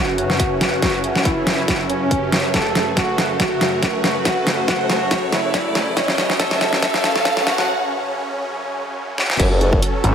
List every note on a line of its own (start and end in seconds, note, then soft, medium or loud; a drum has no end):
0.00 9.36 F#2 medium
0.00 9.36 C#3 medium
0.00 2.53 C#4 loud
0.00 0.53 F#4 loud
0.00 7.68 F#4 medium
0.00 7.68 B4 medium
0.00 7.68 E5 medium
0.00 7.68 A5 medium
0.00 riser medium
0.18 closed hi-hat medium
0.30 snare medium
0.40 kick medium
0.40 closed hi-hat medium
0.61 1.17 F#4 loud
0.61 snare medium
0.61 closed hi-hat medium
0.82 kick loud
0.82 snare medium
0.82 closed hi-hat medium
1.04 closed hi-hat medium
1.16 snare medium
1.25 1.82 E4 loud
1.25 kick loud
1.25 closed hi-hat medium
1.47 snare medium
1.47 closed hi-hat medium
1.68 kick loud
1.68 snare medium
1.68 closed hi-hat medium
1.90 2.46 C#4 loud
1.90 closed hi-hat medium
2.11 kick loud
2.11 closed hi-hat medium
2.32 snare medium
2.32 closed hi-hat medium
2.54 5.96 A3 medium
2.54 2.78 A4 medium
2.54 kick medium
2.54 snare medium
2.54 closed hi-hat medium
2.75 snare medium
2.75 closed hi-hat soft
2.97 3.21 F#4 medium
2.97 kick loud
2.97 snare medium
2.97 closed hi-hat medium
3.18 snare medium
3.18 closed hi-hat medium
3.40 3.96 F#4 loud
3.40 kick loud
3.40 snare medium
3.40 closed hi-hat medium
3.61 snare medium
3.61 closed hi-hat soft
3.83 kick medium
3.83 snare medium
3.83 closed hi-hat medium
4.04 4.60 F#4 loud
4.04 snare medium
4.04 closed hi-hat medium
4.25 kick medium
4.25 snare medium
4.25 closed hi-hat medium
4.47 snare medium
4.47 closed hi-hat soft
4.68 5.25 F#4 loud
4.68 kick loud
4.68 snare medium
4.68 closed hi-hat medium
4.90 snare medium
4.90 closed hi-hat soft
5.11 kick loud
5.11 snare medium
5.11 closed hi-hat medium
5.32 5.89 E4 loud
5.32 snare medium
5.32 closed hi-hat soft
5.54 kick loud
5.54 snare medium
5.54 closed hi-hat medium
5.75 snare medium
5.75 closed hi-hat medium
5.97 9.38 C#4 loud
5.97 6.21 C#5 medium
5.97 kick loud
5.97 snare loud
5.97 closed hi-hat medium
6.08 snare medium
6.18 snare medium
6.18 closed hi-hat medium
6.30 snare medium
6.40 6.64 A4 medium
6.40 kick loud
6.40 snare medium
6.40 closed hi-hat medium
6.51 snare medium
6.61 snare loud
6.61 closed hi-hat soft
6.73 snare medium
6.82 7.39 A4 loud
6.82 kick loud
6.82 snare loud
6.82 closed hi-hat medium
6.94 snare medium
7.04 snare loud
7.04 closed hi-hat soft
7.16 snare medium
7.25 kick loud
7.25 snare loud
7.25 closed hi-hat medium
7.37 snare medium
7.47 7.68 F#4 medium
7.47 snare loud
7.47 closed hi-hat medium
7.58 snare medium
9.18 snare medium
9.30 snare medium
9.40 9.81 F#1 loud
9.40 10.15 F#3 medium
9.40 10.15 C#4 medium
9.40 10.15 F#4 medium
9.40 10.15 A4 medium
9.40 kick loud
9.40 closed hi-hat medium
9.40 crash loud
9.47 10.15 B4 medium
9.61 closed hi-hat medium
9.73 kick loud
9.82 closed hi-hat medium
10.04 10.15 G#1 loud
10.04 closed hi-hat medium